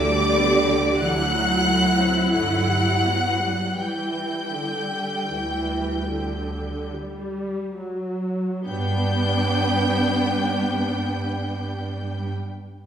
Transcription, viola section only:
0, 0, Header, 1, 2, 480
1, 0, Start_track
1, 0, Key_signature, 1, "major"
1, 0, Tempo, 1197605
1, 404, Tempo, 1330377
1, 884, Time_signature, 4, 2, 24, 8
1, 884, Tempo, 1449275
1, 1364, Tempo, 1534527
1, 1844, Tempo, 1608579
1, 2324, Tempo, 1719198
1, 3284, Tempo, 1648352
1, 4010, End_track
2, 0, Start_track
2, 0, Title_t, "Viola section"
2, 0, Program_c, 0, 48
2, 0, Note_on_c, 0, 67, 83
2, 43, Note_on_c, 0, 55, 80
2, 152, Note_on_c, 0, 59, 74
2, 160, Note_off_c, 0, 55, 0
2, 272, Note_on_c, 0, 55, 71
2, 276, Note_off_c, 0, 59, 0
2, 395, Note_off_c, 0, 67, 0
2, 400, Note_off_c, 0, 55, 0
2, 403, Note_on_c, 0, 50, 74
2, 405, Note_on_c, 0, 64, 86
2, 510, Note_off_c, 0, 50, 0
2, 516, Note_on_c, 0, 54, 66
2, 635, Note_off_c, 0, 54, 0
2, 635, Note_on_c, 0, 57, 67
2, 755, Note_on_c, 0, 60, 57
2, 758, Note_off_c, 0, 57, 0
2, 879, Note_on_c, 0, 50, 64
2, 883, Note_off_c, 0, 60, 0
2, 991, Note_off_c, 0, 50, 0
2, 996, Note_on_c, 0, 55, 58
2, 1118, Note_off_c, 0, 55, 0
2, 1120, Note_on_c, 0, 59, 56
2, 1236, Note_on_c, 0, 55, 58
2, 1241, Note_off_c, 0, 59, 0
2, 1360, Note_on_c, 0, 52, 78
2, 1361, Note_off_c, 0, 55, 0
2, 1364, Note_off_c, 0, 64, 0
2, 1585, Note_off_c, 0, 52, 0
2, 1595, Note_on_c, 0, 50, 60
2, 1841, Note_off_c, 0, 50, 0
2, 1841, Note_on_c, 0, 52, 70
2, 2078, Note_on_c, 0, 50, 61
2, 2081, Note_off_c, 0, 52, 0
2, 2317, Note_off_c, 0, 50, 0
2, 2325, Note_on_c, 0, 55, 80
2, 2561, Note_off_c, 0, 55, 0
2, 2561, Note_on_c, 0, 54, 69
2, 2800, Note_off_c, 0, 54, 0
2, 2805, Note_on_c, 0, 59, 92
2, 2805, Note_on_c, 0, 62, 92
2, 3845, Note_off_c, 0, 62, 0
2, 3846, Note_off_c, 0, 59, 0
2, 4010, End_track
0, 0, End_of_file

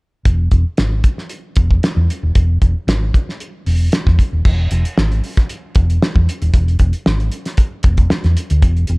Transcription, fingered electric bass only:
0, 0, Header, 1, 3, 480
1, 0, Start_track
1, 0, Key_signature, 4, "major"
1, 0, Tempo, 523560
1, 231, Time_signature, 4, 2, 24, 8
1, 8235, End_track
2, 0, Start_track
2, 0, Title_t, "Fingered electric bass"
2, 0, Program_c, 0, 33
2, 233, Note_on_c, 0, 28, 91
2, 429, Note_off_c, 0, 28, 0
2, 475, Note_on_c, 0, 28, 83
2, 578, Note_off_c, 0, 28, 0
2, 719, Note_on_c, 0, 32, 76
2, 914, Note_off_c, 0, 32, 0
2, 1439, Note_on_c, 0, 28, 90
2, 1635, Note_off_c, 0, 28, 0
2, 1803, Note_on_c, 0, 40, 92
2, 1896, Note_off_c, 0, 40, 0
2, 2043, Note_on_c, 0, 27, 76
2, 2136, Note_off_c, 0, 27, 0
2, 2160, Note_on_c, 0, 28, 84
2, 2356, Note_off_c, 0, 28, 0
2, 2403, Note_on_c, 0, 28, 92
2, 2505, Note_off_c, 0, 28, 0
2, 2634, Note_on_c, 0, 32, 92
2, 2833, Note_off_c, 0, 32, 0
2, 3359, Note_on_c, 0, 28, 67
2, 3556, Note_off_c, 0, 28, 0
2, 3731, Note_on_c, 0, 40, 97
2, 3822, Note_off_c, 0, 40, 0
2, 3965, Note_on_c, 0, 27, 72
2, 4058, Note_off_c, 0, 27, 0
2, 4083, Note_on_c, 0, 28, 94
2, 4278, Note_off_c, 0, 28, 0
2, 4320, Note_on_c, 0, 28, 99
2, 4424, Note_off_c, 0, 28, 0
2, 4563, Note_on_c, 0, 32, 85
2, 4758, Note_off_c, 0, 32, 0
2, 5281, Note_on_c, 0, 28, 90
2, 5476, Note_off_c, 0, 28, 0
2, 5648, Note_on_c, 0, 40, 91
2, 5739, Note_off_c, 0, 40, 0
2, 5883, Note_on_c, 0, 27, 84
2, 5976, Note_off_c, 0, 27, 0
2, 5996, Note_on_c, 0, 28, 102
2, 6193, Note_off_c, 0, 28, 0
2, 6234, Note_on_c, 0, 28, 97
2, 6339, Note_off_c, 0, 28, 0
2, 6474, Note_on_c, 0, 32, 79
2, 6671, Note_off_c, 0, 32, 0
2, 7191, Note_on_c, 0, 28, 85
2, 7388, Note_off_c, 0, 28, 0
2, 7559, Note_on_c, 0, 40, 83
2, 7651, Note_off_c, 0, 40, 0
2, 7799, Note_on_c, 0, 38, 95
2, 7891, Note_off_c, 0, 38, 0
2, 7910, Note_on_c, 0, 28, 112
2, 8106, Note_off_c, 0, 28, 0
2, 8152, Note_on_c, 0, 28, 99
2, 8235, Note_off_c, 0, 28, 0
2, 8235, End_track
3, 0, Start_track
3, 0, Title_t, "Muted fingered electric bass strokes"
3, 7436, Note_on_c, 9, 29, 52
3, 7527, Note_off_c, 9, 29, 0
3, 8235, End_track
0, 0, End_of_file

